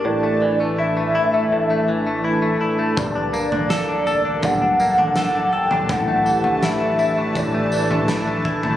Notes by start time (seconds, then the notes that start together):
Already playing: A#3 D4 E4 G4 A4 D5 C#6
0.04 A1 A2 E3 A3 D5 A5
0.23 A3
0.42 E3
0.60 A3
0.79 E4 E5
0.97 A3
1.15 G1 E4
1.34 A3
1.51 A1 A2
1.70 A3
1.88 E3
2.07 A3
2.24 E4
2.42 A3
2.61 E4
2.79 A3
2.97 G1 G2 D3 A#3 D4 D5, kick, floor tom, tambourine
3.15 D4
3.33 A#3, tambourine
3.52 D4, floor tom
3.70 A4 D5, snare, tambourine
3.89 D4
4.06 A1 A4, tambourine
4.25 D4
4.43 G2 F#3 F#5, kick, floor tom, tambourine
4.62 D4
4.80 A#3, tambourine
4.98 D4, floor tom
5.16 A4, snare, tambourine
5.35 D4
5.52 G1 A4 G5
5.71 D4, floor tom
5.89 A1 A2 E3 A3 F#5, kick, floor tom, tambourine
6.08 A3
6.26 E3 G4, tambourine
6.44 A3, floor tom
6.62 E4 E5, snare, tambourine
6.81 A3
6.99 G1 E4, tambourine
7.18 A3
7.35 A1 A2 D5, kick, tambourine
7.54 A3
7.72 E3, tambourine
7.91 A3, floor tom
8.08 E4, snare, tambourine
8.27 A3
8.45 E4, kick
8.63 A3, floor tom